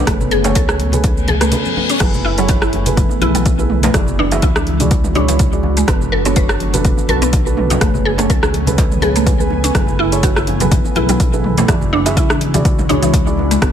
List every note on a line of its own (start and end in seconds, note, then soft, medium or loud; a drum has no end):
0.00 1.97 A3 medium
0.00 1.97 B3 medium
0.07 0.57 F#1 loud
0.07 1.99 C#3 medium
0.07 0.20 A3 medium
0.07 0.42 C#4 medium
0.07 0.42 G#4 medium
0.07 0.42 A4 medium
0.07 0.42 B4 medium
0.07 3.90 G#5 medium
0.07 kick loud
0.07 cross-stick medium
0.07 closed hi-hat medium
0.07 djembe tone medium
0.07 djembe bass medium
0.07 shaker medium
0.21 low conga medium
0.21 shaker soft
0.31 0.43 G#4 loud
0.31 closed hi-hat soft
0.44 0.55 A3 medium
0.44 0.90 C#4 medium
0.44 0.90 G#4 medium
0.44 0.90 A4 medium
0.44 0.90 C#5 loud
0.44 closed hi-hat soft
0.44 djembe slap medium
0.44 djembe tone medium
0.44 shaker medium
0.55 1.52 C#2 medium
0.55 0.63 A4 loud
0.55 kick medium
0.55 closed hi-hat medium
0.55 shaker medium
0.69 0.79 G#4 medium
0.69 cross-stick medium
0.69 djembe tone medium
0.69 shaker soft
0.79 closed hi-hat soft
0.79 high conga medium
0.92 1.26 C#4 medium
0.92 1.26 G#4 medium
0.92 1.26 A4 medium
0.92 1.26 B4 medium
0.92 closed hi-hat soft
0.92 djembe tone medium
0.92 high conga medium
0.92 low conga loud
0.92 shaker medium
1.04 kick loud
1.04 closed hi-hat medium
1.04 reverse cymbal medium
1.04 shaker medium
1.17 shaker soft
1.28 1.35 G#4 loud
1.28 closed hi-hat soft
1.28 high conga medium
1.28 djembe tone medium
1.28 low conga medium
1.41 1.51 A3 medium
1.41 1.50 C#4 medium
1.41 1.50 G#4 medium
1.41 1.50 A4 medium
1.41 1.50 B4 medium
1.41 cross-stick medium
1.41 closed hi-hat soft
1.41 shaker medium
1.52 1.98 C#4 medium
1.52 1.98 G#4 medium
1.52 1.98 A4 medium
1.52 1.98 B4 medium
1.52 closed hi-hat medium
1.52 djembe tone medium
1.52 low conga medium
1.52 shaker medium
1.65 high conga medium
1.65 shaker soft
1.77 djembe tone medium
1.77 high conga medium
1.89 2.00 C#4 medium
1.89 closed hi-hat soft
1.89 shaker medium
2.00 3.06 F#1 medium
2.00 5.84 E3 medium
2.00 2.13 F#3 medium
2.00 3.92 A3 medium
2.00 3.93 B3 medium
2.00 2.35 E4 medium
2.00 2.35 G#4 medium
2.00 2.35 A4 medium
2.00 2.35 B4 medium
2.00 kick loud
2.00 cross-stick medium
2.00 closed hi-hat medium
2.00 crash medium
2.00 djembe bass medium
2.00 shaker medium
2.14 low conga loud
2.14 shaker soft
2.25 2.37 E4 loud
2.25 djembe tone medium
2.38 2.48 F#3 medium
2.38 2.84 E4 medium
2.38 2.83 G#4 medium
2.38 2.84 A4 medium
2.38 2.83 C#5 medium
2.38 closed hi-hat soft
2.38 shaker medium
2.49 2.56 F#4 loud
2.49 kick loud
2.49 closed hi-hat medium
2.49 djembe tone medium
2.49 shaker medium
2.62 2.73 E4 medium
2.62 cross-stick medium
2.62 shaker soft
2.73 closed hi-hat soft
2.73 high conga medium
2.73 djembe tone medium
2.86 3.19 E4 medium
2.86 3.19 G#4 medium
2.86 3.19 A4 medium
2.86 3.19 B4 medium
2.86 closed hi-hat soft
2.86 high conga medium
2.86 low conga loud
2.86 shaker medium
2.97 kick loud
2.97 closed hi-hat medium
2.97 high conga medium
2.97 low conga loud
2.97 shaker medium
3.09 djembe tone medium
3.09 shaker soft
3.21 3.90 B1 medium
3.21 3.29 E4 loud
3.21 3.56 E4 medium
3.21 3.56 G#4 medium
3.21 3.56 A4 medium
3.21 3.56 B4 medium
3.21 closed hi-hat soft
3.21 high conga loud
3.35 3.45 F#3 medium
3.35 closed hi-hat soft
3.35 djembe tone medium
3.35 djembe bass medium
3.35 shaker medium
3.46 kick loud
3.46 closed hi-hat medium
3.46 shaker medium
3.58 3.92 E4 medium
3.58 3.92 G#4 medium
3.58 3.92 A4 medium
3.58 3.92 B4 medium
3.58 djembe tone medium
3.58 shaker soft
3.70 mid tom medium
3.83 3.93 A3 medium
3.83 closed hi-hat soft
3.83 djembe slap medium
3.83 high conga medium
3.83 shaker medium
3.94 4.44 F#1 loud
3.94 4.07 E3 medium
3.94 5.86 G#3 medium
3.94 5.86 D4 medium
3.94 4.29 E4 medium
3.94 7.77 F#4 medium
3.94 4.29 F#4 medium
3.94 4.29 G#4 medium
3.94 4.29 D5 medium
3.94 kick loud
3.94 cross-stick medium
3.94 closed hi-hat soft
3.94 djembe tone medium
3.94 djembe bass medium
3.94 shaker medium
4.07 low conga medium
4.07 shaker soft
4.19 4.31 D4 loud
4.19 djembe tone medium
4.32 4.42 E3 medium
4.32 4.77 E4 medium
4.32 4.77 F#4 medium
4.32 4.77 G#4 medium
4.32 4.77 E5 loud
4.32 closed hi-hat soft
4.32 djembe slap medium
4.32 shaker medium
4.42 5.84 C#2 medium
4.42 4.50 E4 loud
4.42 kick loud
4.42 closed hi-hat medium
4.42 djembe tone medium
4.42 shaker medium
4.56 4.66 D4 medium
4.56 cross-stick loud
4.56 shaker soft
4.66 closed hi-hat soft
4.66 high conga medium
4.80 5.13 E4 medium
4.80 5.13 F#4 medium
4.80 5.13 G#4 medium
4.80 5.13 D5 medium
4.80 closed hi-hat soft
4.80 djembe tone medium
4.80 high conga medium
4.80 low conga loud
4.80 shaker medium
4.91 kick loud
4.91 closed hi-hat medium
4.91 shaker medium
5.04 mid tom medium
5.04 djembe tone medium
5.04 shaker soft
5.15 5.23 D4 loud
5.15 5.50 E4 medium
5.15 5.50 F#4 medium
5.15 5.50 G#4 medium
5.15 5.50 C#5 medium
5.15 closed hi-hat soft
5.15 high conga loud
5.15 low conga medium
5.28 5.38 E3 medium
5.28 closed hi-hat soft
5.28 djembe tone medium
5.28 shaker medium
5.39 kick loud
5.39 closed hi-hat medium
5.39 low conga medium
5.39 shaker medium
5.53 5.85 E4 medium
5.53 5.85 F#4 medium
5.53 5.85 G#4 medium
5.53 5.85 D5 medium
5.53 high conga medium
5.53 shaker soft
5.63 djembe tone medium
5.63 high conga medium
5.77 5.87 G#3 medium
5.77 closed hi-hat soft
5.77 shaker medium
5.87 6.93 F#1 medium
5.87 7.79 D3 medium
5.87 11.64 A3 medium
5.87 7.80 B3 medium
5.87 6.01 B3 medium
5.87 6.22 D4 medium
5.87 6.22 F#4 medium
5.87 6.22 A4 medium
5.87 6.22 B4 medium
5.87 kick loud
5.87 cross-stick medium
5.87 closed hi-hat soft
5.87 djembe tone medium
5.87 djembe bass medium
5.87 shaker medium
6.01 low conga medium
6.01 shaker soft
6.12 6.24 A4 loud
6.12 djembe tone medium
6.25 6.35 B3 medium
6.25 6.71 D4 medium
6.25 6.71 F#4 medium
6.25 6.71 A4 medium
6.25 6.71 C#5 loud
6.25 closed hi-hat soft
6.25 shaker medium
6.36 6.43 B4 loud
6.36 kick loud
6.36 closed hi-hat medium
6.36 shaker medium
6.49 6.60 A4 medium
6.49 cross-stick loud
6.49 djembe tone medium
6.49 shaker soft
6.60 closed hi-hat soft
6.60 high conga medium
6.73 7.06 D4 medium
6.73 7.06 F#4 medium
6.73 7.06 A4 medium
6.73 7.06 B4 medium
6.73 closed hi-hat soft
6.73 high conga medium
6.73 djembe tone medium
6.73 low conga medium
6.73 shaker medium
6.85 kick loud
6.85 closed hi-hat medium
6.85 high conga loud
6.85 low conga loud
6.85 shaker medium
6.97 djembe tone medium
6.97 shaker soft
7.09 7.77 B1 medium
7.09 7.43 D4 medium
7.09 7.43 F#4 medium
7.09 7.16 A4 loud
7.09 7.43 A4 medium
7.09 7.43 B4 medium
7.09 closed hi-hat soft
7.09 high conga loud
7.22 7.32 B3 medium
7.22 closed hi-hat soft
7.22 djembe bass medium
7.22 shaker medium
7.33 kick loud
7.33 closed hi-hat soft
7.33 djembe tone medium
7.33 shaker medium
7.46 7.79 D4 medium
7.46 7.79 F#4 medium
7.46 7.79 A4 medium
7.46 7.79 B4 medium
7.46 shaker soft
7.57 mid tom medium
7.57 djembe tone medium
7.70 7.80 D4 medium
7.70 closed hi-hat soft
7.70 djembe slap medium
7.70 high conga loud
7.70 shaker medium
7.81 8.31 F#1 medium
7.81 9.73 C#3 medium
7.81 7.94 A3 medium
7.81 9.73 B3 medium
7.81 8.16 C#4 medium
7.81 8.16 G#4 medium
7.81 8.16 A4 medium
7.81 8.16 B4 medium
7.81 11.65 G#5 medium
7.81 kick loud
7.81 cross-stick medium
7.81 closed hi-hat medium
7.81 djembe tone medium
7.81 djembe bass medium
7.81 shaker medium
7.94 low conga loud
7.94 shaker soft
8.05 8.18 G#4 loud
8.18 8.29 A3 medium
8.18 8.64 C#4 medium
8.18 8.64 G#4 medium
8.18 8.64 A4 medium
8.18 8.64 C#5 loud
8.18 closed hi-hat soft
8.18 djembe slap medium
8.18 djembe tone medium
8.18 shaker medium
8.30 9.71 C#2 medium
8.30 8.37 A4 medium
8.30 kick loud
8.30 closed hi-hat medium
8.30 shaker medium
8.43 8.53 G#4 medium
8.43 cross-stick medium
8.43 djembe tone medium
8.43 shaker soft
8.54 closed hi-hat soft
8.54 high conga medium
8.67 9.00 C#4 medium
8.67 9.00 G#4 medium
8.67 9.00 A4 medium
8.67 9.00 B4 medium
8.67 closed hi-hat soft
8.67 high conga medium
8.67 djembe tone medium
8.67 low conga loud
8.67 shaker medium
8.78 kick loud
8.78 closed hi-hat medium
8.78 djembe slap medium
8.78 shaker medium
8.91 mid tom medium
8.91 shaker soft
9.02 9.37 C#4 medium
9.02 9.09 G#4 loud
9.02 9.37 G#4 medium
9.02 9.37 A4 medium
9.02 9.37 B4 medium
9.02 closed hi-hat soft
9.02 high conga medium
9.02 djembe tone medium
9.02 low conga medium
9.16 9.26 A3 medium
9.16 closed hi-hat soft
9.16 shaker medium
9.26 kick loud
9.26 closed hi-hat medium
9.26 djembe tone medium
9.26 low conga medium
9.26 shaker medium
9.39 9.72 C#4 medium
9.39 9.72 G#4 medium
9.39 9.72 A4 medium
9.39 9.72 B4 medium
9.39 high conga medium
9.39 shaker soft
9.50 high conga medium
9.50 djembe tone medium
9.64 9.74 C#4 medium
9.64 closed hi-hat soft
9.64 shaker medium
9.75 10.80 F#1 loud
9.75 13.58 E3 medium
9.75 9.88 F#3 medium
9.75 11.67 B3 medium
9.75 10.09 E4 medium
9.75 10.09 G#4 medium
9.75 10.09 A4 medium
9.75 10.09 B4 medium
9.75 kick loud
9.75 cross-stick medium
9.75 closed hi-hat medium
9.75 djembe bass medium
9.75 shaker medium
9.87 low conga medium
9.87 shaker soft
9.99 10.11 E4 loud
9.99 djembe tone medium
10.12 10.58 E4 medium
10.12 10.58 G#4 medium
10.12 10.58 A4 medium
10.12 10.58 C#5 medium
10.12 closed hi-hat soft
10.12 shaker medium
10.23 10.30 F#4 medium
10.23 kick loud
10.23 closed hi-hat medium
10.23 djembe tone medium
10.23 shaker medium
10.36 10.47 E4 medium
10.36 cross-stick medium
10.36 shaker soft
10.47 closed hi-hat soft
10.47 high conga medium
10.47 djembe tone medium
10.60 10.71 F#3 medium
10.60 10.94 E4 medium
10.60 10.93 G#4 medium
10.60 10.93 A4 medium
10.60 10.94 B4 medium
10.60 closed hi-hat soft
10.60 high conga medium
10.60 low conga loud
10.60 shaker medium
10.71 kick loud
10.71 closed hi-hat medium
10.71 high conga medium
10.71 low conga medium
10.71 shaker medium
10.84 djembe tone medium
10.84 shaker soft
10.95 11.64 B1 medium
10.95 11.03 E4 loud
10.95 11.30 E4 medium
10.95 11.30 G#4 medium
10.95 11.30 A4 medium
10.95 11.30 B4 medium
10.95 closed hi-hat soft
10.95 high conga medium
11.09 11.19 F#3 medium
11.09 closed hi-hat soft
11.09 djembe tone medium
11.09 djembe bass medium
11.09 shaker medium
11.20 kick loud
11.20 closed hi-hat medium
11.20 shaker medium
11.33 11.66 E4 medium
11.33 11.66 G#4 medium
11.33 11.66 A4 medium
11.33 11.66 B4 medium
11.33 djembe tone medium
11.33 shaker soft
11.44 mid tom medium
11.57 11.68 A3 medium
11.57 closed hi-hat soft
11.57 djembe slap medium
11.57 high conga loud
11.57 shaker medium
11.68 12.18 F#1 medium
11.68 11.81 E3 medium
11.68 13.60 G#3 medium
11.68 13.60 D4 medium
11.68 12.03 E4 medium
11.68 13.60 F#4 medium
11.68 12.03 F#4 medium
11.68 12.03 G#4 medium
11.68 12.03 D5 medium
11.68 kick loud
11.68 cross-stick medium
11.68 closed hi-hat medium
11.68 djembe tone medium
11.68 djembe bass loud
11.68 shaker medium
11.81 low conga medium
11.81 shaker soft
11.93 12.05 D4 loud
11.93 djembe tone medium
12.06 12.51 E4 medium
12.06 12.51 F#4 medium
12.06 12.51 G#4 medium
12.06 12.51 E5 loud
12.06 closed hi-hat soft
12.06 djembe slap medium
12.06 shaker medium
12.17 13.58 C#2 medium
12.17 12.24 E4 medium
12.17 kick loud
12.17 closed hi-hat medium
12.17 djembe tone medium
12.17 shaker medium
12.30 12.41 D4 medium
12.30 cross-stick medium
12.30 shaker soft
12.41 closed hi-hat soft
12.41 high conga medium
12.54 12.64 E3 medium
12.54 12.87 E4 medium
12.54 12.87 F#4 medium
12.54 12.87 G#4 medium
12.54 12.87 D5 medium
12.54 closed hi-hat soft
12.54 high conga medium
12.54 djembe tone medium
12.54 low conga loud
12.54 shaker medium
12.65 kick loud
12.65 closed hi-hat medium
12.65 shaker medium
12.79 mid tom medium
12.79 djembe tone medium
12.79 shaker soft
12.89 12.97 D4 loud
12.89 13.24 E4 medium
12.89 13.24 F#4 medium
12.89 13.24 G#4 medium
12.89 13.24 C#5 loud
12.89 closed hi-hat soft
12.89 high conga loud
12.89 low conga medium
13.02 13.12 E3 medium
13.02 closed hi-hat soft
13.02 djembe tone medium
13.02 shaker medium
13.13 kick medium
13.13 closed hi-hat medium
13.13 low conga medium
13.13 shaker medium
13.27 13.59 E4 medium
13.27 13.59 F#4 medium
13.27 13.59 G#4 medium
13.27 13.59 D5 medium
13.27 high conga medium
13.27 shaker soft
13.37 high conga medium
13.37 djembe tone medium
13.51 13.61 G#3 medium
13.51 closed hi-hat soft
13.51 shaker medium
13.61 13.72 F#1 loud
13.61 13.72 D3 medium
13.61 13.72 A3 medium
13.61 13.72 B3 medium
13.61 13.72 D4 medium
13.61 13.72 F#4 medium
13.61 13.72 A4 medium
13.61 13.72 B4 medium
13.61 kick loud
13.61 cross-stick medium
13.61 closed hi-hat medium
13.61 djembe tone medium
13.61 djembe bass loud
13.61 shaker medium